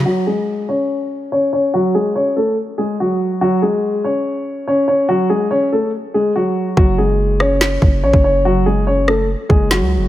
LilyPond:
<<
  \new Staff \with { instrumentName = "Grand piano" } { \time 4/4 \key fis \minor \tempo 4 = 143 <fis fis'>8 <gis gis'>4 <cis' cis''>4. <cis' cis''>8 <cis' cis''>8 | <fis fis'>8 <gis gis'>8 <cis' cis''>8 <a a'>8 r8 <gis gis'>8 <fis fis'>4 | <fis fis'>8 <gis gis'>4 <cis' cis''>4. <cis' cis''>8 <cis' cis''>8 | <fis fis'>8 <gis gis'>8 <cis' cis''>8 <a a'>8 r8 <gis gis'>8 <fis fis'>4 |
<fis fis'>8 <gis gis'>4 <cis' cis''>4. <cis' cis''>8 <cis' cis''>8 | <fis fis'>8 <gis gis'>8 <cis' cis''>8 <a a'>8 r8 <gis gis'>8 <fis fis'>4 | }
  \new Staff \with { instrumentName = "808-style bass" } { \clef bass \time 4/4 \key fis \minor r1 | r1 | r1 | r1 |
fis,,2~ fis,,8 fis,,8 a,,16 fis,,8.~ | fis,,2~ fis,,16 r16 fis,,8. cis,16. fis,,16. | }
  \new DrumStaff \with { instrumentName = "Drums" } \drummode { \time 4/4 r4 r4 r4 r4 | r4 r4 r4 r4 | r4 r4 r4 r4 | r4 r4 r4 r4 |
bd4 r8 ss8 sn8 bd8 r16 bd8. | r4 r8 ss8 r8 bd8 sn4 | }
>>